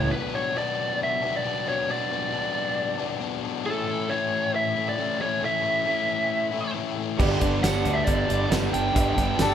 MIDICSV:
0, 0, Header, 1, 9, 480
1, 0, Start_track
1, 0, Key_signature, 2, "minor"
1, 0, Tempo, 441501
1, 123, Time_signature, 4, 2, 24, 8
1, 10375, End_track
2, 0, Start_track
2, 0, Title_t, "Lead electric guitar"
2, 0, Program_c, 0, 29
2, 125, Note_on_c, 0, 71, 86
2, 373, Note_off_c, 0, 71, 0
2, 376, Note_on_c, 0, 73, 82
2, 619, Note_off_c, 0, 73, 0
2, 626, Note_on_c, 0, 74, 109
2, 1065, Note_off_c, 0, 74, 0
2, 1127, Note_on_c, 0, 76, 108
2, 1445, Note_off_c, 0, 76, 0
2, 1485, Note_on_c, 0, 74, 104
2, 1828, Note_off_c, 0, 74, 0
2, 1832, Note_on_c, 0, 73, 95
2, 2069, Note_off_c, 0, 73, 0
2, 2078, Note_on_c, 0, 74, 83
2, 3466, Note_off_c, 0, 74, 0
2, 3979, Note_on_c, 0, 69, 89
2, 4455, Note_on_c, 0, 73, 116
2, 4473, Note_off_c, 0, 69, 0
2, 4903, Note_off_c, 0, 73, 0
2, 4953, Note_on_c, 0, 76, 116
2, 5311, Note_off_c, 0, 76, 0
2, 5316, Note_on_c, 0, 74, 95
2, 5665, Note_off_c, 0, 74, 0
2, 5669, Note_on_c, 0, 73, 111
2, 5887, Note_off_c, 0, 73, 0
2, 5928, Note_on_c, 0, 76, 103
2, 7308, Note_off_c, 0, 76, 0
2, 8298, Note_on_c, 0, 78, 117
2, 8628, Note_on_c, 0, 76, 82
2, 8630, Note_off_c, 0, 78, 0
2, 8744, Note_off_c, 0, 76, 0
2, 8744, Note_on_c, 0, 74, 76
2, 9236, Note_off_c, 0, 74, 0
2, 9499, Note_on_c, 0, 79, 104
2, 10375, Note_off_c, 0, 79, 0
2, 10375, End_track
3, 0, Start_track
3, 0, Title_t, "Lead electric guitar"
3, 0, Program_c, 1, 29
3, 10241, Note_on_c, 1, 69, 86
3, 10375, Note_off_c, 1, 69, 0
3, 10375, End_track
4, 0, Start_track
4, 0, Title_t, "Reed electric piano"
4, 0, Program_c, 2, 4
4, 7816, Note_on_c, 2, 67, 87
4, 7818, Note_on_c, 2, 62, 104
4, 7830, Note_on_c, 2, 71, 84
4, 7837, Note_on_c, 2, 74, 107
4, 8199, Note_off_c, 2, 67, 0
4, 8200, Note_off_c, 2, 62, 0
4, 8206, Note_off_c, 2, 71, 0
4, 8209, Note_off_c, 2, 74, 0
4, 8295, Note_on_c, 2, 62, 68
4, 8305, Note_on_c, 2, 67, 71
4, 8309, Note_on_c, 2, 71, 73
4, 8322, Note_on_c, 2, 73, 77
4, 8677, Note_off_c, 2, 62, 0
4, 8682, Note_off_c, 2, 67, 0
4, 8684, Note_off_c, 2, 71, 0
4, 8691, Note_off_c, 2, 73, 0
4, 8769, Note_on_c, 2, 62, 69
4, 8781, Note_on_c, 2, 67, 68
4, 8785, Note_on_c, 2, 71, 74
4, 8788, Note_on_c, 2, 74, 76
4, 9153, Note_off_c, 2, 62, 0
4, 9159, Note_off_c, 2, 67, 0
4, 9161, Note_off_c, 2, 71, 0
4, 9163, Note_off_c, 2, 74, 0
4, 9244, Note_on_c, 2, 62, 78
4, 9255, Note_on_c, 2, 67, 64
4, 9255, Note_on_c, 2, 71, 66
4, 9266, Note_on_c, 2, 74, 76
4, 9629, Note_off_c, 2, 62, 0
4, 9635, Note_off_c, 2, 67, 0
4, 9635, Note_off_c, 2, 71, 0
4, 9640, Note_off_c, 2, 74, 0
4, 9735, Note_on_c, 2, 62, 76
4, 9738, Note_on_c, 2, 67, 70
4, 9753, Note_on_c, 2, 71, 80
4, 9760, Note_on_c, 2, 76, 93
4, 10113, Note_off_c, 2, 62, 0
4, 10115, Note_off_c, 2, 67, 0
4, 10122, Note_off_c, 2, 71, 0
4, 10126, Note_off_c, 2, 76, 0
4, 10217, Note_on_c, 2, 62, 92
4, 10225, Note_on_c, 2, 67, 91
4, 10227, Note_on_c, 2, 71, 80
4, 10238, Note_on_c, 2, 74, 99
4, 10375, Note_off_c, 2, 62, 0
4, 10375, Note_off_c, 2, 67, 0
4, 10375, Note_off_c, 2, 71, 0
4, 10375, Note_off_c, 2, 74, 0
4, 10375, End_track
5, 0, Start_track
5, 0, Title_t, "Overdriven electric guitar"
5, 0, Program_c, 3, 29
5, 0, Note_on_c, 3, 57, 108
5, 0, Note_on_c, 3, 61, 107
5, 0, Note_on_c, 3, 64, 109
5, 110, Note_off_c, 3, 57, 0
5, 114, Note_on_c, 3, 47, 83
5, 116, Note_off_c, 3, 61, 0
5, 120, Note_off_c, 3, 64, 0
5, 126, Note_on_c, 3, 54, 90
5, 135, Note_on_c, 3, 59, 93
5, 149, Note_on_c, 3, 62, 80
5, 356, Note_off_c, 3, 62, 0
5, 361, Note_on_c, 3, 62, 67
5, 371, Note_off_c, 3, 59, 0
5, 375, Note_on_c, 3, 59, 63
5, 382, Note_off_c, 3, 54, 0
5, 386, Note_on_c, 3, 54, 62
5, 594, Note_off_c, 3, 47, 0
5, 599, Note_on_c, 3, 47, 72
5, 609, Note_off_c, 3, 54, 0
5, 614, Note_off_c, 3, 59, 0
5, 614, Note_on_c, 3, 54, 83
5, 618, Note_on_c, 3, 59, 81
5, 621, Note_off_c, 3, 62, 0
5, 625, Note_on_c, 3, 62, 76
5, 1309, Note_off_c, 3, 62, 0
5, 1322, Note_on_c, 3, 62, 58
5, 1325, Note_off_c, 3, 59, 0
5, 1338, Note_on_c, 3, 59, 64
5, 1344, Note_off_c, 3, 54, 0
5, 1357, Note_on_c, 3, 54, 62
5, 1559, Note_off_c, 3, 47, 0
5, 1568, Note_off_c, 3, 54, 0
5, 1572, Note_on_c, 3, 47, 98
5, 1574, Note_off_c, 3, 59, 0
5, 1581, Note_on_c, 3, 54, 106
5, 1587, Note_off_c, 3, 62, 0
5, 1587, Note_on_c, 3, 59, 103
5, 1600, Note_on_c, 3, 62, 108
5, 1805, Note_off_c, 3, 62, 0
5, 1817, Note_off_c, 3, 59, 0
5, 1818, Note_on_c, 3, 62, 75
5, 1830, Note_on_c, 3, 59, 62
5, 1837, Note_off_c, 3, 54, 0
5, 1850, Note_on_c, 3, 54, 69
5, 2036, Note_off_c, 3, 47, 0
5, 2047, Note_off_c, 3, 54, 0
5, 2049, Note_on_c, 3, 47, 82
5, 2059, Note_off_c, 3, 59, 0
5, 2060, Note_on_c, 3, 54, 79
5, 2066, Note_off_c, 3, 62, 0
5, 2072, Note_on_c, 3, 59, 96
5, 2079, Note_on_c, 3, 62, 101
5, 2281, Note_off_c, 3, 62, 0
5, 2292, Note_off_c, 3, 59, 0
5, 2294, Note_on_c, 3, 62, 63
5, 2305, Note_on_c, 3, 59, 65
5, 2307, Note_off_c, 3, 54, 0
5, 2320, Note_on_c, 3, 54, 55
5, 2499, Note_off_c, 3, 47, 0
5, 2512, Note_on_c, 3, 47, 75
5, 2514, Note_off_c, 3, 54, 0
5, 2524, Note_off_c, 3, 59, 0
5, 2527, Note_off_c, 3, 62, 0
5, 2527, Note_on_c, 3, 54, 67
5, 2537, Note_on_c, 3, 59, 82
5, 2540, Note_on_c, 3, 62, 85
5, 3225, Note_off_c, 3, 62, 0
5, 3238, Note_on_c, 3, 62, 77
5, 3241, Note_off_c, 3, 59, 0
5, 3254, Note_on_c, 3, 59, 63
5, 3259, Note_off_c, 3, 54, 0
5, 3272, Note_on_c, 3, 54, 59
5, 3471, Note_off_c, 3, 47, 0
5, 3484, Note_on_c, 3, 47, 98
5, 3486, Note_off_c, 3, 54, 0
5, 3489, Note_off_c, 3, 59, 0
5, 3499, Note_on_c, 3, 54, 104
5, 3500, Note_off_c, 3, 62, 0
5, 3502, Note_on_c, 3, 59, 118
5, 3513, Note_on_c, 3, 62, 114
5, 3711, Note_off_c, 3, 62, 0
5, 3722, Note_off_c, 3, 59, 0
5, 3724, Note_on_c, 3, 62, 71
5, 3735, Note_on_c, 3, 59, 68
5, 3738, Note_off_c, 3, 54, 0
5, 3751, Note_on_c, 3, 54, 64
5, 3956, Note_off_c, 3, 62, 0
5, 3957, Note_off_c, 3, 47, 0
5, 3962, Note_off_c, 3, 59, 0
5, 3969, Note_on_c, 3, 45, 90
5, 3970, Note_off_c, 3, 54, 0
5, 3975, Note_on_c, 3, 52, 87
5, 3982, Note_on_c, 3, 57, 87
5, 3993, Note_on_c, 3, 61, 99
5, 3998, Note_on_c, 3, 64, 97
5, 4207, Note_off_c, 3, 64, 0
5, 4211, Note_on_c, 3, 64, 64
5, 4215, Note_off_c, 3, 61, 0
5, 4220, Note_on_c, 3, 61, 70
5, 4235, Note_off_c, 3, 57, 0
5, 4240, Note_on_c, 3, 57, 57
5, 4430, Note_off_c, 3, 52, 0
5, 4434, Note_on_c, 3, 52, 73
5, 4441, Note_off_c, 3, 57, 0
5, 4445, Note_on_c, 3, 57, 85
5, 4453, Note_off_c, 3, 61, 0
5, 4457, Note_on_c, 3, 61, 78
5, 4459, Note_off_c, 3, 64, 0
5, 4463, Note_on_c, 3, 64, 82
5, 5157, Note_off_c, 3, 64, 0
5, 5169, Note_off_c, 3, 61, 0
5, 5170, Note_on_c, 3, 64, 74
5, 5182, Note_on_c, 3, 61, 66
5, 5185, Note_off_c, 3, 57, 0
5, 5198, Note_on_c, 3, 57, 60
5, 5390, Note_off_c, 3, 52, 0
5, 5400, Note_off_c, 3, 45, 0
5, 5402, Note_off_c, 3, 57, 0
5, 5403, Note_on_c, 3, 52, 92
5, 5404, Note_on_c, 3, 45, 109
5, 5410, Note_off_c, 3, 61, 0
5, 5412, Note_off_c, 3, 64, 0
5, 5415, Note_on_c, 3, 57, 111
5, 5423, Note_on_c, 3, 61, 114
5, 5425, Note_on_c, 3, 64, 115
5, 5634, Note_off_c, 3, 64, 0
5, 5647, Note_on_c, 3, 64, 73
5, 5651, Note_off_c, 3, 61, 0
5, 5663, Note_off_c, 3, 57, 0
5, 5664, Note_on_c, 3, 61, 73
5, 5676, Note_on_c, 3, 57, 60
5, 5869, Note_off_c, 3, 45, 0
5, 5880, Note_off_c, 3, 52, 0
5, 5882, Note_off_c, 3, 57, 0
5, 5882, Note_on_c, 3, 45, 84
5, 5891, Note_off_c, 3, 61, 0
5, 5893, Note_on_c, 3, 52, 84
5, 5895, Note_on_c, 3, 57, 88
5, 5899, Note_off_c, 3, 64, 0
5, 5904, Note_on_c, 3, 61, 93
5, 5912, Note_on_c, 3, 64, 108
5, 6105, Note_off_c, 3, 64, 0
5, 6118, Note_on_c, 3, 64, 65
5, 6126, Note_off_c, 3, 61, 0
5, 6140, Note_on_c, 3, 61, 54
5, 6143, Note_off_c, 3, 57, 0
5, 6156, Note_on_c, 3, 57, 54
5, 6359, Note_off_c, 3, 52, 0
5, 6370, Note_off_c, 3, 45, 0
5, 6372, Note_off_c, 3, 57, 0
5, 6372, Note_on_c, 3, 52, 68
5, 6384, Note_off_c, 3, 61, 0
5, 6385, Note_off_c, 3, 64, 0
5, 6385, Note_on_c, 3, 57, 81
5, 6397, Note_on_c, 3, 61, 82
5, 6398, Note_on_c, 3, 64, 75
5, 7068, Note_off_c, 3, 64, 0
5, 7078, Note_off_c, 3, 61, 0
5, 7081, Note_on_c, 3, 64, 67
5, 7091, Note_on_c, 3, 61, 61
5, 7096, Note_off_c, 3, 57, 0
5, 7109, Note_on_c, 3, 57, 66
5, 7322, Note_on_c, 3, 45, 100
5, 7323, Note_off_c, 3, 52, 0
5, 7331, Note_off_c, 3, 57, 0
5, 7336, Note_on_c, 3, 52, 96
5, 7341, Note_off_c, 3, 61, 0
5, 7343, Note_off_c, 3, 64, 0
5, 7344, Note_on_c, 3, 57, 92
5, 7354, Note_on_c, 3, 61, 109
5, 7356, Note_on_c, 3, 64, 113
5, 7558, Note_off_c, 3, 64, 0
5, 7571, Note_on_c, 3, 64, 72
5, 7583, Note_off_c, 3, 61, 0
5, 7585, Note_off_c, 3, 57, 0
5, 7596, Note_on_c, 3, 61, 73
5, 7598, Note_on_c, 3, 57, 64
5, 7794, Note_off_c, 3, 45, 0
5, 7799, Note_off_c, 3, 64, 0
5, 7801, Note_off_c, 3, 52, 0
5, 7801, Note_on_c, 3, 43, 84
5, 7811, Note_off_c, 3, 61, 0
5, 7811, Note_on_c, 3, 50, 92
5, 7813, Note_off_c, 3, 57, 0
5, 7822, Note_on_c, 3, 55, 95
5, 7831, Note_on_c, 3, 59, 88
5, 7832, Note_on_c, 3, 62, 103
5, 8051, Note_off_c, 3, 62, 0
5, 8056, Note_on_c, 3, 62, 71
5, 8068, Note_off_c, 3, 59, 0
5, 8072, Note_on_c, 3, 59, 62
5, 8084, Note_off_c, 3, 55, 0
5, 8089, Note_on_c, 3, 55, 57
5, 8280, Note_off_c, 3, 50, 0
5, 8293, Note_on_c, 3, 50, 80
5, 8299, Note_off_c, 3, 55, 0
5, 8303, Note_on_c, 3, 55, 73
5, 8312, Note_off_c, 3, 59, 0
5, 8316, Note_on_c, 3, 59, 77
5, 8318, Note_off_c, 3, 62, 0
5, 8322, Note_on_c, 3, 62, 83
5, 8990, Note_off_c, 3, 62, 0
5, 9004, Note_on_c, 3, 62, 81
5, 9013, Note_off_c, 3, 59, 0
5, 9026, Note_on_c, 3, 59, 60
5, 9028, Note_off_c, 3, 55, 0
5, 9041, Note_on_c, 3, 55, 57
5, 9250, Note_off_c, 3, 50, 0
5, 9252, Note_off_c, 3, 43, 0
5, 9256, Note_on_c, 3, 43, 99
5, 9261, Note_off_c, 3, 55, 0
5, 9266, Note_off_c, 3, 59, 0
5, 9267, Note_on_c, 3, 50, 106
5, 9273, Note_off_c, 3, 62, 0
5, 9274, Note_on_c, 3, 55, 112
5, 9279, Note_on_c, 3, 59, 117
5, 9286, Note_on_c, 3, 62, 118
5, 9471, Note_off_c, 3, 62, 0
5, 9484, Note_on_c, 3, 62, 73
5, 9486, Note_off_c, 3, 59, 0
5, 9499, Note_off_c, 3, 55, 0
5, 9499, Note_on_c, 3, 59, 61
5, 9512, Note_on_c, 3, 55, 69
5, 9704, Note_off_c, 3, 43, 0
5, 9715, Note_off_c, 3, 50, 0
5, 9717, Note_on_c, 3, 43, 81
5, 9728, Note_off_c, 3, 55, 0
5, 9728, Note_on_c, 3, 50, 92
5, 9734, Note_off_c, 3, 59, 0
5, 9735, Note_off_c, 3, 62, 0
5, 9741, Note_on_c, 3, 55, 94
5, 9747, Note_on_c, 3, 59, 89
5, 9748, Note_on_c, 3, 62, 107
5, 9934, Note_off_c, 3, 62, 0
5, 9947, Note_on_c, 3, 62, 71
5, 9956, Note_off_c, 3, 59, 0
5, 9969, Note_off_c, 3, 55, 0
5, 9970, Note_on_c, 3, 59, 65
5, 9982, Note_on_c, 3, 55, 55
5, 10169, Note_off_c, 3, 50, 0
5, 10182, Note_off_c, 3, 55, 0
5, 10182, Note_on_c, 3, 50, 77
5, 10192, Note_off_c, 3, 59, 0
5, 10195, Note_on_c, 3, 55, 86
5, 10199, Note_off_c, 3, 43, 0
5, 10205, Note_on_c, 3, 59, 85
5, 10207, Note_off_c, 3, 62, 0
5, 10220, Note_on_c, 3, 62, 76
5, 10375, Note_off_c, 3, 50, 0
5, 10375, Note_off_c, 3, 55, 0
5, 10375, Note_off_c, 3, 59, 0
5, 10375, Note_off_c, 3, 62, 0
5, 10375, End_track
6, 0, Start_track
6, 0, Title_t, "Overdriven electric guitar"
6, 0, Program_c, 4, 29
6, 0, Note_on_c, 4, 52, 87
6, 109, Note_off_c, 4, 52, 0
6, 8763, Note_on_c, 4, 43, 99
6, 8769, Note_on_c, 4, 50, 99
6, 8783, Note_on_c, 4, 55, 103
6, 8788, Note_on_c, 4, 59, 107
6, 8791, Note_on_c, 4, 62, 108
6, 8991, Note_off_c, 4, 62, 0
6, 9005, Note_off_c, 4, 59, 0
6, 9018, Note_off_c, 4, 55, 0
6, 9218, Note_off_c, 4, 50, 0
6, 9246, Note_off_c, 4, 43, 0
6, 10375, End_track
7, 0, Start_track
7, 0, Title_t, "Overdriven electric guitar"
7, 0, Program_c, 5, 29
7, 8510, Note_on_c, 5, 55, 84
7, 8526, Note_on_c, 5, 50, 70
7, 8544, Note_on_c, 5, 43, 76
7, 9224, Note_off_c, 5, 55, 0
7, 9232, Note_off_c, 5, 50, 0
7, 9234, Note_off_c, 5, 43, 0
7, 10375, End_track
8, 0, Start_track
8, 0, Title_t, "Fingered electric bass"
8, 0, Program_c, 6, 33
8, 7821, Note_on_c, 6, 31, 94
8, 8001, Note_off_c, 6, 31, 0
8, 8065, Note_on_c, 6, 31, 81
8, 8243, Note_off_c, 6, 31, 0
8, 8302, Note_on_c, 6, 31, 100
8, 8481, Note_off_c, 6, 31, 0
8, 8539, Note_on_c, 6, 38, 95
8, 8719, Note_off_c, 6, 38, 0
8, 8780, Note_on_c, 6, 31, 92
8, 8959, Note_off_c, 6, 31, 0
8, 9021, Note_on_c, 6, 31, 87
8, 9199, Note_off_c, 6, 31, 0
8, 9260, Note_on_c, 6, 31, 93
8, 9438, Note_off_c, 6, 31, 0
8, 9502, Note_on_c, 6, 31, 74
8, 9679, Note_off_c, 6, 31, 0
8, 9746, Note_on_c, 6, 31, 90
8, 9920, Note_off_c, 6, 31, 0
8, 9979, Note_on_c, 6, 31, 77
8, 10156, Note_off_c, 6, 31, 0
8, 10217, Note_on_c, 6, 31, 94
8, 10375, Note_off_c, 6, 31, 0
8, 10375, End_track
9, 0, Start_track
9, 0, Title_t, "Drums"
9, 7818, Note_on_c, 9, 56, 94
9, 7824, Note_on_c, 9, 36, 113
9, 7830, Note_on_c, 9, 49, 105
9, 7926, Note_off_c, 9, 56, 0
9, 7933, Note_off_c, 9, 36, 0
9, 7939, Note_off_c, 9, 49, 0
9, 8059, Note_on_c, 9, 42, 59
9, 8063, Note_on_c, 9, 36, 77
9, 8168, Note_off_c, 9, 42, 0
9, 8172, Note_off_c, 9, 36, 0
9, 8305, Note_on_c, 9, 38, 109
9, 8305, Note_on_c, 9, 42, 99
9, 8305, Note_on_c, 9, 54, 112
9, 8413, Note_off_c, 9, 38, 0
9, 8413, Note_off_c, 9, 42, 0
9, 8413, Note_off_c, 9, 54, 0
9, 8532, Note_on_c, 9, 56, 76
9, 8538, Note_on_c, 9, 42, 73
9, 8641, Note_off_c, 9, 56, 0
9, 8647, Note_off_c, 9, 42, 0
9, 8769, Note_on_c, 9, 56, 104
9, 8774, Note_on_c, 9, 42, 98
9, 8781, Note_on_c, 9, 36, 86
9, 8878, Note_off_c, 9, 56, 0
9, 8883, Note_off_c, 9, 42, 0
9, 8890, Note_off_c, 9, 36, 0
9, 9017, Note_on_c, 9, 56, 81
9, 9024, Note_on_c, 9, 42, 71
9, 9125, Note_off_c, 9, 56, 0
9, 9133, Note_off_c, 9, 42, 0
9, 9250, Note_on_c, 9, 56, 80
9, 9262, Note_on_c, 9, 38, 111
9, 9262, Note_on_c, 9, 42, 103
9, 9262, Note_on_c, 9, 54, 124
9, 9359, Note_off_c, 9, 56, 0
9, 9370, Note_off_c, 9, 38, 0
9, 9370, Note_off_c, 9, 42, 0
9, 9370, Note_off_c, 9, 54, 0
9, 9499, Note_on_c, 9, 56, 74
9, 9502, Note_on_c, 9, 42, 82
9, 9608, Note_off_c, 9, 56, 0
9, 9611, Note_off_c, 9, 42, 0
9, 9740, Note_on_c, 9, 56, 109
9, 9741, Note_on_c, 9, 36, 110
9, 9742, Note_on_c, 9, 42, 112
9, 9849, Note_off_c, 9, 56, 0
9, 9850, Note_off_c, 9, 36, 0
9, 9850, Note_off_c, 9, 42, 0
9, 9980, Note_on_c, 9, 36, 70
9, 9980, Note_on_c, 9, 38, 33
9, 9980, Note_on_c, 9, 42, 74
9, 10089, Note_off_c, 9, 36, 0
9, 10089, Note_off_c, 9, 38, 0
9, 10089, Note_off_c, 9, 42, 0
9, 10209, Note_on_c, 9, 38, 118
9, 10209, Note_on_c, 9, 42, 107
9, 10209, Note_on_c, 9, 54, 108
9, 10318, Note_off_c, 9, 38, 0
9, 10318, Note_off_c, 9, 42, 0
9, 10318, Note_off_c, 9, 54, 0
9, 10375, End_track
0, 0, End_of_file